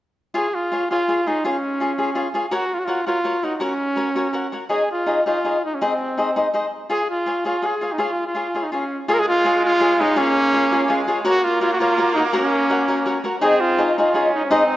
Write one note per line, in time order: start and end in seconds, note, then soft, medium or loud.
0.34 0.46 F4 medium
0.34 0.47 G#4 medium
0.34 0.56 G#4 medium
0.34 0.47 C#5 medium
0.34 0.47 F5 medium
0.55 0.90 F4 medium
0.72 0.83 F4 soft
0.72 0.83 G#4 soft
0.72 0.84 C#5 medium
0.72 0.84 F5 soft
0.91 1.01 F4 soft
0.91 1.29 F4 medium
0.91 1.01 G#4 soft
0.91 1.02 C#5 medium
0.91 1.02 F5 soft
1.08 1.19 F4 soft
1.08 1.20 G#4 soft
1.08 1.20 C#5 soft
1.08 1.20 F5 soft
1.26 1.44 D#4 medium
1.26 1.37 F4 soft
1.26 1.38 G#4 soft
1.26 1.38 C#5 soft
1.26 1.38 F5 soft
1.44 2.32 C#4 medium
1.44 1.56 F4 medium
1.44 1.56 G#4 medium
1.44 1.56 C#5 medium
1.44 1.56 F5 medium
1.80 1.91 F4 soft
1.80 1.92 G#4 soft
1.80 1.92 C#5 medium
1.80 1.92 F5 soft
1.98 2.09 F4 soft
1.98 2.09 G#4 medium
1.98 2.09 C#5 medium
1.98 2.10 F5 medium
2.15 2.27 F4 soft
2.15 2.27 G#4 medium
2.15 2.27 C#5 medium
2.15 2.27 F5 medium
2.34 2.45 F4 soft
2.34 2.45 G#4 medium
2.34 2.45 C#5 medium
2.34 2.46 F5 medium
2.51 2.63 F#4 medium
2.51 2.76 F#4 medium
2.51 2.63 A#4 medium
2.51 2.64 C#5 medium
2.51 2.64 F#5 medium
2.74 2.81 F4 medium
2.79 2.87 F#4 medium
2.85 3.06 F4 medium
2.85 2.99 F#4 soft
2.85 3.00 A#4 soft
2.85 3.00 C#5 medium
2.85 3.00 F#5 medium
3.07 3.45 F4 medium
3.07 3.17 F#4 soft
3.07 3.18 A#4 medium
3.07 3.18 C#5 soft
3.07 3.18 F#5 soft
3.24 3.36 F#4 soft
3.24 3.36 A#4 soft
3.24 3.36 C#5 medium
3.24 3.36 F#5 medium
3.43 3.55 D#4 medium
3.43 3.54 F#4 soft
3.43 3.54 A#4 soft
3.43 3.54 C#5 soft
3.43 3.54 F#5 soft
3.55 3.63 D#4 soft
3.60 4.53 C#4 medium
3.60 3.72 F#4 medium
3.60 3.72 A#4 medium
3.60 3.72 C#5 medium
3.60 3.72 F#5 medium
3.96 4.08 F#4 soft
3.96 4.09 A#4 soft
3.96 4.09 C#5 medium
3.96 4.09 F#5 soft
4.16 4.27 F#4 soft
4.16 4.27 A#4 soft
4.16 4.27 C#5 medium
4.16 4.27 F#5 soft
4.33 4.45 F#4 soft
4.33 4.45 A#4 soft
4.33 4.46 C#5 medium
4.33 4.46 F#5 medium
4.52 4.63 F#4 soft
4.52 4.63 A#4 soft
4.52 4.64 C#5 soft
4.52 4.64 F#5 soft
4.69 4.82 D#4 soft
4.69 4.82 G#4 medium
4.69 4.89 G#4 medium
4.69 4.82 C#5 medium
4.69 4.82 D#5 medium
4.92 5.25 F4 medium
5.06 5.18 D#4 medium
5.06 5.19 G#4 soft
5.06 5.19 C#5 soft
5.06 5.19 D#5 medium
5.26 5.37 D#4 soft
5.26 5.60 F4 medium
5.26 5.37 G#4 soft
5.26 5.37 C#5 soft
5.26 5.37 D#5 medium
5.44 5.55 D#4 soft
5.44 5.56 G#4 soft
5.44 5.56 C#5 soft
5.44 5.56 D#5 soft
5.65 5.76 D#4 medium
5.74 5.83 C#4 soft
5.81 6.45 C4 medium
5.81 5.92 D#4 medium
5.81 5.92 G#4 medium
5.81 5.92 C5 medium
5.81 5.93 D#5 medium
6.17 6.28 D#4 soft
6.17 6.29 G#4 medium
6.17 6.29 C5 medium
6.17 6.29 D#5 soft
6.36 6.46 D#4 medium
6.36 6.46 G#4 medium
6.36 6.47 C5 medium
6.36 6.47 D#5 medium
6.53 6.65 D#4 soft
6.53 6.65 G#4 soft
6.53 6.65 C5 medium
6.53 6.65 D#5 medium
6.89 7.01 F4 medium
6.89 7.01 G#4 medium
6.89 7.08 G#4 medium
6.89 7.01 C#5 medium
6.89 7.01 F5 medium
7.10 7.43 F4 medium
7.26 7.37 F4 soft
7.26 7.37 G#4 soft
7.26 7.38 C#5 medium
7.26 7.38 F5 soft
7.44 7.55 F4 soft
7.44 7.67 F4 medium
7.44 7.55 G#4 medium
7.44 7.56 C#5 medium
7.44 7.56 F5 medium
7.62 7.73 F4 soft
7.62 7.74 G#4 soft
7.62 7.74 C#5 soft
7.62 7.74 F5 soft
7.66 7.94 G#4 medium
7.81 7.92 F4 soft
7.81 7.92 G#4 soft
7.81 7.92 C#5 soft
7.81 7.92 F5 soft
7.92 8.02 D#4 medium
7.98 8.10 F4 medium
7.98 8.27 F4 medium
7.98 8.10 G#4 medium
7.98 8.10 C#5 medium
7.98 8.10 F5 medium
8.27 8.64 F4 medium
8.35 8.46 F4 medium
8.35 8.47 G#4 soft
8.35 8.47 C#5 soft
8.35 8.47 F5 soft
8.54 8.65 F4 soft
8.54 8.65 G#4 soft
8.54 8.65 C#5 soft
8.54 8.65 F5 soft
8.63 8.72 D#4 medium
8.72 8.98 C#4 medium
8.72 8.83 F4 soft
8.72 8.83 G#4 soft
8.72 8.84 C#5 soft
8.72 8.84 F5 soft
9.05 11.22 C#4 medium
9.05 9.20 F4 medium
9.05 11.22 G#4 medium
9.05 9.20 G#4 medium
9.05 11.22 F5 medium
9.09 10.19 G#3 medium
9.09 9.15 G#4 loud
9.09 9.20 C#5 medium
9.09 9.20 F5 medium
9.14 9.21 A#4 medium
9.19 9.28 G#4 loud
9.29 9.62 F4 loud
9.45 9.56 F4 medium
9.45 9.56 G#4 medium
9.45 9.57 C#5 medium
9.45 9.57 F5 medium
9.65 10.02 F4 loud
9.80 9.92 F4 medium
9.80 9.92 G#4 medium
9.80 9.93 C#5 soft
9.80 9.93 F5 soft
10.00 10.19 D#4 medium
10.00 10.10 F4 soft
10.00 10.11 G#4 soft
10.00 10.11 C#5 soft
10.00 10.11 F5 medium
10.16 10.92 A#3 loud
10.16 11.09 C#4 loud
10.16 10.28 F4 medium
10.16 10.28 G#4 medium
10.16 10.28 C#5 medium
10.16 10.29 F5 medium
10.53 10.65 F4 medium
10.53 10.65 G#4 medium
10.53 10.65 C#5 medium
10.53 10.65 F5 medium
10.72 10.82 F4 medium
10.72 10.83 G#4 medium
10.72 10.83 C#5 medium
10.72 10.83 F5 medium
10.88 11.26 G#3 medium
10.88 11.00 F4 medium
10.88 11.01 G#4 medium
10.88 11.01 C#5 medium
10.88 11.01 F5 medium
11.07 11.18 F4 medium
11.07 11.18 G#4 medium
11.07 11.19 C#5 medium
11.07 11.19 F5 medium
11.24 13.22 A#3 loud
11.24 11.36 F#4 medium
11.24 11.46 F#4 loud
11.24 11.37 A#4 medium
11.24 13.40 A#4 medium
11.24 11.37 C#5 medium
11.24 11.37 F#5 medium
11.24 13.40 A#5 medium
11.44 11.61 F4 medium
11.61 11.72 F4 medium
11.61 11.72 F#4 medium
11.61 11.73 A#4 medium
11.61 11.73 C#5 medium
11.61 11.73 F#5 medium
11.73 11.81 F#4 medium
11.80 12.14 F4 medium
11.80 11.90 F#4 medium
11.80 11.91 A#4 medium
11.80 11.91 C#5 medium
11.80 11.91 F#5 medium
11.97 12.09 F#4 medium
11.97 12.09 A#4 medium
11.97 12.09 C#5 soft
11.97 12.09 F#5 medium
12.15 12.23 D#4 medium
12.15 12.27 F#4 soft
12.15 12.27 A#4 medium
12.15 12.27 C#5 soft
12.15 12.27 F#5 soft
12.33 13.21 C#4 medium
12.33 12.44 F#4 medium
12.33 12.45 A#4 medium
12.33 12.45 C#5 medium
12.33 12.45 F#5 medium
12.70 12.81 F#4 soft
12.70 12.81 A#4 medium
12.70 12.81 C#5 medium
12.70 12.82 F#5 medium
12.88 12.99 F#4 medium
12.88 12.99 A#4 medium
12.88 12.99 C#5 medium
12.88 13.00 F#5 medium
13.06 13.17 F#4 medium
13.06 13.17 A#4 medium
13.06 13.18 C#5 medium
13.06 13.18 F#5 medium
13.24 13.35 F#4 soft
13.24 13.35 A#4 medium
13.24 13.35 C#5 soft
13.24 13.36 F#5 medium
13.41 14.50 G#3 medium
13.41 13.84 C4 loud
13.41 13.53 D#4 medium
13.41 14.77 D#4 medium
13.41 13.53 G#4 medium
13.41 13.62 G#4 medium
13.41 13.54 C#5 medium
13.41 13.54 D#5 medium
13.61 13.97 F4 medium
13.78 13.90 D#4 medium
13.78 13.90 G#4 soft
13.78 13.90 C#5 medium
13.78 13.91 D#5 medium
13.98 14.08 D#4 soft
13.98 14.32 F4 medium
13.98 14.09 G#4 medium
13.98 14.09 C#5 medium
13.98 14.09 D#5 medium
14.14 14.53 C#4 medium
14.14 14.26 D#4 soft
14.14 14.26 G#4 medium
14.14 14.27 C#5 medium
14.14 14.27 D#5 medium
14.35 14.44 D#4 medium
14.45 14.53 C#4 medium
14.51 14.77 G#3 medium
14.51 14.77 C4 medium
14.51 14.62 D#4 medium
14.51 14.77 D#4 medium
14.51 14.63 G#4 medium
14.51 14.77 C5 medium
14.51 14.63 C5 medium
14.51 14.63 D#5 medium